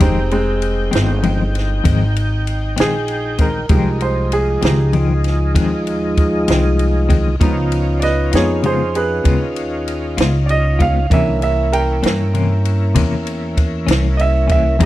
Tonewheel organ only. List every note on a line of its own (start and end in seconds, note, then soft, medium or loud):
0.00 3.66 D#4 medium
0.00 3.66 G5 medium
3.69 7.36 F3 medium
3.69 7.36 G#3 medium
3.69 7.36 D#4 medium
7.40 11.07 C#4 medium
7.40 11.07 D#4 medium
7.40 11.07 F4 medium
11.10 11.41 D3 medium
11.10 11.40 A#3 medium
11.10 11.40 E4 medium
11.41 14.77 A#3 medium
11.41 14.77 C#4 medium
11.41 14.77 E4 medium
14.81 14.85 D#4 medium
14.81 14.85 F4 medium